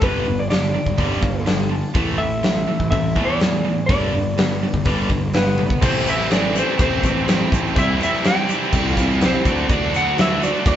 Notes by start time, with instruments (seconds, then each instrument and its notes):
0.01 picked electric bass G1, distorted electric guitar G2 D3 G3, reed electric piano D4 G4 B4, electric slide guitar B4, kick, open hi-hat
0.26 picked electric bass G1, distorted electric guitar G2 D3
0.40 electric slide guitar D5
0.49 distorted electric guitar G2 D3, reed electric piano D4 G4 D5, electric slide guitar D5, snare, open hi-hat
0.74 distorted electric guitar G2 D3
0.86 picked electric bass G1, kick
0.98 picked electric bass G1, distorted electric guitar G2 D3 G3, reed electric piano D4 G4 D5, kick, open hi-hat
1.21 picked electric bass G1, distorted electric guitar G2 D3, reed electric piano F5, kick
1.46 distorted electric guitar G2 D3, reed electric piano D4 G4 A4 G5, snare, open hi-hat
1.69 distorted electric guitar G2 D3, reed electric piano A5
1.94 picked electric bass A1, distorted electric guitar A2 E3 A3, reed electric piano E4 A4 C5, kick, open hi-hat
2.18 distorted electric guitar A2 E3, electric slide guitar E5
2.43 distorted electric guitar A2 E3, reed electric piano E4 A4 C5, snare, open hi-hat
2.67 distorted electric guitar A2 E3
2.80 picked electric bass A1, kick
2.90 picked electric bass A1, distorted electric guitar A2 E3, reed electric piano E4 A4 C5, electric slide guitar E5, kick, open hi-hat
3.16 picked electric bass E2, distorted electric guitar A2 E3 A3, kick
3.25 electric slide guitar D5
3.39 distorted electric guitar A2 E3, reed electric piano E4 A4 C5, snare, open hi-hat
3.65 distorted electric guitar A2 E3
3.86 picked electric bass G1, distorted electric guitar G2 D3 G3, reed electric piano D4 G4 B4, electric slide guitar D5, kick, open hi-hat
4.12 picked electric bass G1, distorted electric guitar G2 D3
4.37 distorted electric guitar G2 D3, reed electric piano D4 G4 B4, snare, open hi-hat
4.51 snare
4.63 distorted electric guitar G2 D3
4.74 picked electric bass G1, kick
4.85 picked electric bass G1, distorted electric guitar G2 D3 G3, reed electric piano D4 G4 B4, kick, open hi-hat
5.10 picked electric bass G1, distorted electric guitar G2 D3, kick
5.33 distorted electric guitar G2 D3, lead electric guitar B3, reed electric piano D4 G4 B4, electric slide guitar B4, snare, open hi-hat
5.58 distorted electric guitar G2 D3, high tom
5.70 kick
5.81 picked electric bass A1, distorted electric guitar A2 E3 A3 C4 E4, tonewheel organ A3 G4 C5, reed electric piano G4 A4 C5, electric slide guitar C5, kick, crash, shaker
6.07 distorted electric guitar A3 C4 E4, electric slide guitar E5, crash, shaker
6.20 snare
6.30 distorted electric guitar E3 A3 C4, lead electric guitar D4, reed electric piano G4 A4 B4, electric slide guitar D5, snare, crash, shaker
6.35 distorted electric guitar E4
6.55 distorted electric guitar A2 E3 A3 C4 E4, reed electric piano G4 A4 B4, electric slide guitar C5, crash, shaker
6.78 picked electric bass A1, distorted electric guitar E3 A3 C4, reed electric piano G4 A4 C5, electric slide guitar C5, kick, crash, shaker
6.83 distorted electric guitar E4
7.03 picked electric bass A1, distorted electric guitar A2 E3 A3 C4 E4, kick, crash, shaker
7.26 distorted electric guitar E3 A3 C4 E4, reed electric piano G4 A4 C5, snare, crash, shaker
7.51 picked electric bass A1, distorted electric guitar A3 C4 E4, kick, crash, shaker
7.66 shaker
7.75 picked electric bass C2, distorted electric guitar C3 E3 G3 C4, tonewheel organ G3 E4 C5, reed electric piano E4 G4 C5, electric slide guitar E5, kick, crash, shaker
7.79 distorted electric guitar E4
8.00 distorted electric guitar G3 C4 E4, electric slide guitar E5, crash, shaker
8.05 lead electric guitar E4
8.14 snare
8.23 distorted electric guitar E3 G3 C4, reed electric piano E4 G4 D5, lead electric guitar G4, electric slide guitar G5, snare, crash, shaker
8.28 distorted electric guitar E4
8.48 distorted electric guitar C3 E3 G3 C4 E4, reed electric piano E4 G4 D5, crash, shaker
8.62 shaker
8.72 picked electric bass C2, distorted electric guitar E3 G3 C4 E4, reed electric piano E4 G4 A4, kick, crash, shaker
8.91 lead electric guitar F4
8.96 picked electric bass C2, distorted electric guitar C3 E3 G3 C4 E4, electric slide guitar F5, kick, crash, shaker
9.20 distorted electric guitar E3 G3 C4 E4, reed electric piano E4 G4 C5, snare, crash, shaker
9.26 electric slide guitar C5
9.43 picked electric bass D2, distorted electric guitar D3 A3 D4 F#4, tonewheel organ F#3 E4 D5, reed electric piano E4 F#4 D5, kick, crash, shaker
9.47 overdriven electric guitar F#4
9.57 shaker
9.67 picked electric bass D2, distorted electric guitar D3 A3 D4 F#4, kick, crash, shaker
9.72 electric slide guitar D5
9.92 distorted electric guitar A3 D4 F#4, crash, shaker
9.96 lead electric guitar F#4, electric slide guitar F#5
10.06 shaker
10.17 distorted electric guitar D3 A3 D4 F#4, reed electric piano E4 F#4 B4, lead electric guitar E4, snare, crash, shaker
10.21 electric slide guitar E5
10.41 distorted electric guitar D3 A3 D4 F#4, reed electric piano E4 F#4 D5, electric slide guitar D5, crash, shaker
10.55 shaker
10.65 picked electric bass D2, distorted electric guitar D3 A3 D4 F#4, reed electric piano E4 F#4 D5, electric slide guitar D5, kick, crash, shaker